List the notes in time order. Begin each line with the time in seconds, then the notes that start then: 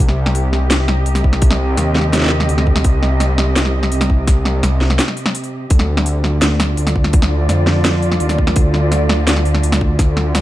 Already playing: G4
0.00 C2 C3
0.08 snare
0.24 C4, snare
0.35 closed hi-hat
0.45 D#5
0.53 snare
0.71 snare, closed hi-hat
0.88 snare
1.06 C2, closed hi-hat
1.15 snare, closed hi-hat
1.24 kick
1.33 snare
1.42 kick, closed hi-hat
1.51 snare
1.77 D#2, snare, closed hi-hat
1.95 snare
1.98 snare
2.01 snare
2.13 snare, closed hi-hat
2.15 snare
2.18 snare
2.20 snare
2.22 snare
2.24 snare
2.27 snare
2.29 snare
2.40 snare
2.49 D2, closed hi-hat
2.58 snare
2.67 kick
2.76 snare
2.84 C2, kick, closed hi-hat
3.03 snare
3.20 snare, closed hi-hat
3.38 snare
3.56 snare, closed hi-hat
3.65 snare
3.83 snare
3.92 C2, closed hi-hat
4.01 snare, closed hi-hat
4.10 kick
4.27 kick, snare, closed hi-hat
4.45 snare
4.63 C2, snare, closed hi-hat
4.81 snare
4.90 snare
4.99 snare, closed hi-hat
5.08 snare
5.17 closed hi-hat
5.26 snare
5.35 closed hi-hat
5.44 closed hi-hat
5.70 D2 D3, kick, closed hi-hat
5.79 snare
5.97 snare
6.02 A3, closed hi-hat
6.10 F4 D5
6.24 snare
6.42 snare, closed hi-hat
6.60 snare, closed hi-hat
6.77 D2, closed hi-hat
6.87 snare, closed hi-hat
6.96 kick
7.04 snare
7.13 kick, closed hi-hat
7.22 snare
7.49 F2, snare, closed hi-hat
7.67 snare
7.85 snare, closed hi-hat
8.02 closed hi-hat
8.12 snare
8.20 D#2, closed hi-hat
8.29 snare, closed hi-hat
8.38 kick
8.47 snare
8.56 D2, kick, closed hi-hat
8.74 snare
8.92 snare, closed hi-hat
9.09 snare
9.27 snare, closed hi-hat
9.36 snare
9.45 closed hi-hat
9.54 snare
9.63 D2, closed hi-hat
9.72 snare, closed hi-hat
9.81 kick
9.99 kick, snare, closed hi-hat
10.17 snare
10.35 D2, snare, closed hi-hat